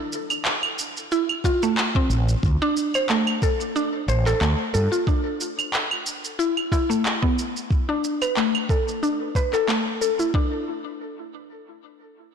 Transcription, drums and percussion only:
0.13 shaker
0.30 claves, shaker
0.45 clap, shaker
0.63 claves
0.79 shaker
0.97 shaker
1.12 shaker
1.29 claves
1.44 kick, shaker
1.63 shaker
1.77 clap, shaker
1.95 kick
2.10 shaker
2.29 shaker
2.43 kick, shaker
2.77 shaker
2.94 claves, shaker
3.09 clap, shaker
3.27 claves
3.42 kick, shaker
3.61 shaker
3.76 shaker
4.09 shaker
4.27 clap, shaker
4.41 clap, shaker
4.75 shaker
4.93 shaker
5.07 kick, shaker
5.41 shaker
5.59 claves, shaker
5.74 clap, shaker
5.91 claves
6.06 shaker
6.25 shaker
6.40 shaker
6.57 claves
6.72 kick, shaker
6.91 shaker
7.06 clap, shaker
7.23 kick
7.39 shaker
7.56 shaker
7.71 kick, shaker
8.04 shaker
8.22 claves, shaker
8.37 clap, shaker
8.55 claves
8.69 kick, shaker
8.88 shaker
9.03 shaker
9.35 kick, shaker
9.53 clap, shaker
9.69 clap, shaker
10.02 shaker
10.20 shaker
10.34 kick

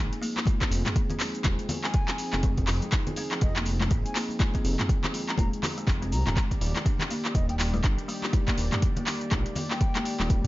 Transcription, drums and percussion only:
0.13 closed hi-hat, cabasa
0.23 open hi-hat, cabasa
0.36 clap, muted conga, cabasa
0.46 kick, closed hi-hat, high conga, cabasa
0.61 kick, clap, closed hi-hat, muted conga, cabasa
0.72 open hi-hat, cabasa
0.85 clap, closed hi-hat, mid tom, muted conga, high conga, cabasa
0.96 kick, closed hi-hat, cabasa
1.10 closed hi-hat, muted conga, low conga, cabasa
1.20 clap, open hi-hat, cabasa
1.35 closed hi-hat, cabasa
1.44 kick, clap, closed hi-hat, muted conga, high conga, cabasa
1.59 closed hi-hat, cabasa
1.69 open hi-hat, muted conga, low conga, cabasa
1.84 clap, cabasa
1.94 kick, closed hi-hat, muted conga, cabasa
2.08 clap, closed hi-hat, high conga, cabasa
2.18 open hi-hat, cabasa
2.33 clap, muted conga, cabasa
2.43 kick, closed hi-hat, high conga, cabasa
2.58 kick, closed hi-hat, muted conga, cabasa
2.67 clap, open hi-hat, cabasa
2.82 closed hi-hat, muted conga, high conga, cabasa
2.92 kick, clap, closed hi-hat, cabasa
3.07 closed hi-hat, muted conga, low conga, cabasa
3.16 open hi-hat, cabasa
3.31 clap, closed hi-hat, cabasa
3.41 kick, closed hi-hat, muted conga, cabasa
3.56 clap, closed hi-hat, cabasa
3.65 open hi-hat, muted conga, cabasa
3.80 clap, high conga, cabasa
3.90 kick, closed hi-hat, muted conga, cabasa
4.06 closed hi-hat, cabasa
4.15 clap, open hi-hat, cabasa
4.29 muted conga, cabasa
4.39 kick, clap, closed hi-hat, high conga, cabasa
4.54 kick, closed hi-hat, muted conga, cabasa
4.65 open hi-hat, cabasa
4.78 clap, closed hi-hat, mid tom, muted conga, high conga, cabasa
4.89 kick, closed hi-hat, cabasa
5.03 clap, closed hi-hat, muted conga, low conga, cabasa
5.14 open hi-hat, cabasa
5.29 clap, closed hi-hat, cabasa
5.37 kick, closed hi-hat, muted conga, high conga, cabasa
5.53 closed hi-hat, cabasa
5.63 clap, open hi-hat, muted conga, low conga, cabasa
5.78 closed hi-hat, cabasa
5.87 kick, clap, closed hi-hat, muted conga, cabasa
6.02 closed hi-hat, high conga, cabasa
6.12 open hi-hat, cabasa
6.26 clap, closed hi-hat, mid tom, muted conga, cabasa
6.36 kick, clap, closed hi-hat, high conga, cabasa
6.51 kick, closed hi-hat, muted conga, cabasa
6.61 open hi-hat, cabasa
6.75 clap, closed hi-hat, muted conga, high conga, cabasa
6.86 kick, closed hi-hat, cabasa
6.99 clap, closed hi-hat, muted conga, low conga, cabasa
7.11 open hi-hat, cabasa
7.25 clap, closed hi-hat, cabasa
7.35 kick, closed hi-hat, muted conga, cabasa
7.49 closed hi-hat, cabasa
7.59 clap, open hi-hat, muted conga, cabasa
7.74 high conga, cabasa
7.83 kick, clap, closed hi-hat, muted conga, cabasa
7.98 closed hi-hat, cabasa
8.09 open hi-hat, cabasa
8.22 clap, muted conga, cabasa
8.33 kick, closed hi-hat, high conga, cabasa
8.47 kick, clap, closed hi-hat, muted conga, cabasa
8.58 open hi-hat, cabasa
8.72 clap, closed hi-hat, mid tom, muted conga, high conga, cabasa
8.82 kick, closed hi-hat, cabasa
8.96 closed hi-hat, muted conga, low conga, cabasa
9.07 clap, open hi-hat, cabasa
9.21 closed hi-hat, cabasa
9.31 kick, clap, closed hi-hat, muted conga, high conga, cabasa
9.46 closed hi-hat, cabasa
9.55 open hi-hat, muted conga, low conga, cabasa
9.71 clap, cabasa
9.81 kick, closed hi-hat, muted conga, cabasa
9.95 clap, closed hi-hat, high conga, cabasa
10.05 open hi-hat, cabasa
10.19 clap, muted conga, cabasa
10.29 kick, closed hi-hat, high conga, cabasa

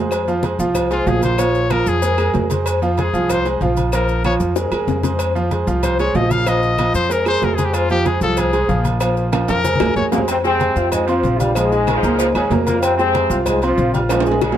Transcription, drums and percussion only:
0.11 cowbell, high conga, low agogo, claves, maracas
0.27 high conga, maracas
0.43 cowbell, high conga, low agogo, maracas
0.60 maracas
0.75 cowbell, high conga, low conga, low agogo, claves, maracas
0.91 cowbell, high conga, low agogo, maracas
1.07 cowbell, high conga, low timbale, maracas
1.23 high conga, low agogo, maracas
1.38 cowbell, high conga, low agogo, claves, maracas
1.55 high conga, maracas
1.70 cowbell, high conga, low agogo, claves, maracas
1.86 high conga, maracas
2.02 cowbell, high conga, low agogo, maracas
2.18 high conga, low agogo, claves, maracas
2.34 cowbell, high conga, low timbale, maracas
2.50 cowbell, high conga, low agogo, maracas
2.66 cowbell, high conga, low agogo, claves, maracas
2.82 high conga, maracas
2.97 cowbell, high conga, low agogo, maracas
3.14 maracas
3.29 cowbell, high conga, low conga, low agogo, claves, maracas
3.45 cowbell, high conga, low agogo, maracas
3.61 cowbell, high conga, maracas
3.77 high conga, low agogo, maracas
3.92 cowbell, high conga, low agogo, claves, maracas
4.08 high conga, maracas
4.24 cowbell, high conga, low agogo, claves, maracas
4.40 high conga, maracas
4.56 cowbell, high bongo, high conga, low agogo, maracas
4.72 high conga, low agogo, claves, maracas
4.88 cowbell, low bongo, high conga, maracas
5.03 cowbell, low bongo, high conga, low agogo, maracas
5.19 cowbell, high conga, low agogo, claves, maracas
5.36 high conga, maracas
5.51 cowbell, high conga, low agogo, maracas
5.68 maracas
5.83 cowbell, high conga, low conga, low agogo, claves, maracas
5.99 cowbell, high conga, low agogo, maracas
6.15 cowbell, high conga, low timbale, maracas
6.31 high conga, low agogo, maracas
6.46 cowbell, low agogo, claves, maracas
6.63 high conga, maracas
6.78 cowbell, high conga, low agogo, claves, maracas
6.95 high conga, maracas
7.10 cowbell, high conga, low agogo, maracas
7.25 high conga, low agogo, claves, maracas
7.42 cowbell, high conga, low timbale, maracas
7.58 cowbell, high conga, low agogo, maracas
7.73 cowbell, high conga, low agogo, claves, maracas
7.90 high conga, maracas
8.05 cowbell, high conga, low agogo, maracas
8.21 maracas
8.37 cowbell, high conga, low conga, low agogo, claves, maracas
8.53 cowbell, high conga, low agogo, maracas
8.69 cowbell, high conga, maracas
8.85 high conga, low agogo, maracas
9.00 cowbell, high conga, low agogo, claves, maracas
9.17 high conga, maracas
9.33 cowbell, high conga, high timbale, low agogo, claves, maracas
9.48 high conga, high timbale, maracas
9.65 cowbell, high conga, low agogo, maracas
9.75 high conga
9.80 high bongo, low timbale, low agogo, claves, maracas
9.86 low conga
9.96 cowbell, low conga, low timbale, maracas
10.12 cowbell, low bongo, low timbale, low agogo, maracas
10.18 low conga
10.28 cowbell, high conga, low agogo, claves, maracas
10.45 high conga, maracas
10.60 cowbell, high conga, low agogo, maracas
10.76 maracas
10.92 cowbell, high conga, low conga, low agogo, claves, maracas
11.08 cowbell, high conga, low agogo, maracas
11.23 cowbell, high conga, maracas
11.40 high conga, low agogo, maracas
11.55 cowbell, high conga, low agogo, claves, maracas
11.72 high conga, maracas
11.87 cowbell, high conga, low agogo, claves, maracas
12.04 high conga, maracas
12.19 cowbell, high conga, low agogo, maracas
12.35 high conga, low agogo, claves, maracas
12.51 cowbell, high conga, low timbale, maracas
12.67 cowbell, high conga, low agogo, maracas
12.83 cowbell, high conga, low agogo, claves, maracas
12.99 high conga, maracas
13.15 cowbell, high conga, low agogo, maracas
13.31 maracas
13.46 cowbell, high conga, low conga, low agogo, claves, maracas
13.62 cowbell, high conga, low agogo, maracas
13.78 cowbell, high conga, maracas
13.94 high conga, low agogo, maracas
14.09 cowbell, high conga, high timbale, low agogo, claves, maracas
14.20 high timbale
14.26 high conga, maracas
14.31 high timbale
14.41 cowbell, high bongo, high conga, low agogo, claves, maracas
14.52 low timbale

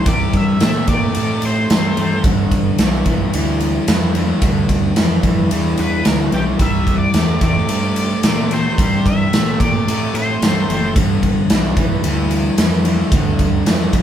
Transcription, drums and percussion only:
0.06 kick, ride
0.33 kick, ride
0.60 snare, ride
0.87 kick, ride
1.15 ride
1.42 ride
1.70 snare, ride
1.97 ride
2.24 kick, ride
2.51 kick, ride
2.78 snare, ride
3.06 kick, ride
3.33 ride
3.60 ride
3.88 snare, ride
4.15 ride
4.42 kick, ride
4.69 kick, ride
4.96 snare, ride
5.23 kick, ride
5.51 ride
5.78 ride
6.05 snare, ride
6.32 ride
6.59 kick, ride
6.87 kick, ride
7.14 snare, ride
7.41 kick, ride
7.69 ride
7.96 ride
8.23 snare, ride
8.51 ride
8.78 kick, ride
9.06 kick, ride
9.33 snare, ride
9.60 kick, ride
9.88 ride
10.15 ride
10.42 snare, ride
10.70 ride
10.96 kick, ride
11.23 kick, ride
11.50 snare, ride
11.77 kick, ride
12.04 ride
12.31 ride
12.58 snare, ride
12.85 ride
13.12 kick, ride
13.39 kick, ride
13.66 snare, ride
13.93 kick, ride

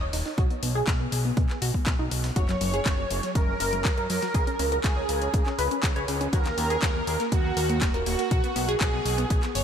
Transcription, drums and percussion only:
0.13 open hi-hat
0.26 snare
0.38 kick, closed hi-hat
0.50 closed hi-hat
0.63 closed hi-hat, open hi-hat
0.87 kick, snare, clap, closed hi-hat
1.12 closed hi-hat, open hi-hat
1.37 kick, closed hi-hat
1.49 snare, clap
1.62 closed hi-hat, open hi-hat
1.74 kick
1.86 kick, snare, clap, closed hi-hat
2.11 closed hi-hat, open hi-hat
2.24 snare, closed hi-hat
2.36 kick, closed hi-hat
2.49 snare, clap, closed hi-hat
2.61 closed hi-hat, open hi-hat
2.73 closed hi-hat
2.86 kick, snare, clap, closed hi-hat
3.10 closed hi-hat, open hi-hat
3.23 snare, closed hi-hat
3.35 kick, closed hi-hat
3.60 closed hi-hat, open hi-hat
3.73 closed hi-hat
3.85 kick, snare, clap, closed hi-hat
3.98 closed hi-hat
4.10 open hi-hat
4.22 snare, closed hi-hat
4.34 kick, closed hi-hat
4.47 closed hi-hat
4.59 closed hi-hat, open hi-hat
4.72 closed hi-hat
4.84 kick, snare, clap, closed hi-hat
5.09 closed hi-hat, open hi-hat
5.22 closed hi-hat
5.34 kick, closed hi-hat
5.46 snare, clap
5.59 closed hi-hat, open hi-hat
5.71 closed hi-hat
5.83 kick, snare, clap, closed hi-hat
5.96 closed hi-hat
6.08 snare, closed hi-hat, open hi-hat
6.21 closed hi-hat
6.33 kick, closed hi-hat
6.45 snare, clap, closed hi-hat
6.58 closed hi-hat, open hi-hat
6.70 closed hi-hat
6.82 kick, snare, clap, closed hi-hat
7.07 closed hi-hat, open hi-hat
7.20 snare, closed hi-hat
7.32 kick, closed hi-hat
7.57 closed hi-hat, open hi-hat
7.69 closed hi-hat
7.81 kick, snare, clap, closed hi-hat
7.94 closed hi-hat
8.06 open hi-hat
8.19 snare, closed hi-hat
8.31 kick, closed hi-hat
8.44 closed hi-hat
8.56 closed hi-hat, open hi-hat
8.69 closed hi-hat
8.81 kick, snare, clap, closed hi-hat
9.06 closed hi-hat, open hi-hat
9.18 closed hi-hat
9.30 kick, closed hi-hat
9.43 snare, clap, closed hi-hat
9.55 closed hi-hat, open hi-hat

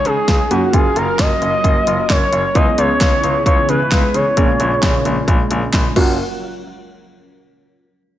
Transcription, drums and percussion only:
0.05 closed hi-hat
0.28 kick, snare, closed hi-hat
0.51 closed hi-hat
0.73 kick, closed hi-hat
0.96 closed hi-hat
1.19 kick, snare, clap, closed hi-hat
1.42 closed hi-hat
1.64 kick, closed hi-hat
1.87 closed hi-hat
2.10 kick, snare, clap, closed hi-hat
2.33 closed hi-hat
2.55 kick, closed hi-hat
2.78 closed hi-hat
3.01 kick, snare, clap, closed hi-hat
3.24 closed hi-hat
3.46 kick, closed hi-hat
3.69 closed hi-hat
3.91 kick, snare, clap, closed hi-hat
4.14 closed hi-hat
4.37 kick, closed hi-hat
4.60 closed hi-hat
4.83 kick, snare, clap, closed hi-hat
5.05 closed hi-hat
5.28 kick, closed hi-hat
5.51 closed hi-hat
5.73 kick, snare, clap, closed hi-hat
5.96 kick, crash

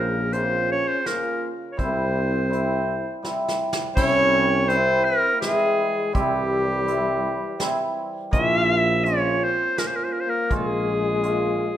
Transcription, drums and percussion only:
0.33 closed hi-hat
1.06 snare, closed hi-hat
1.79 kick, closed hi-hat
2.53 closed hi-hat
3.24 snare
3.48 snare
3.73 snare
3.97 kick, crash
4.69 closed hi-hat
5.42 snare, closed hi-hat
6.15 kick, closed hi-hat
6.88 closed hi-hat
7.60 snare, closed hi-hat
8.33 kick, closed hi-hat
9.06 closed hi-hat
9.78 snare, closed hi-hat
10.51 kick, closed hi-hat
11.23 closed hi-hat

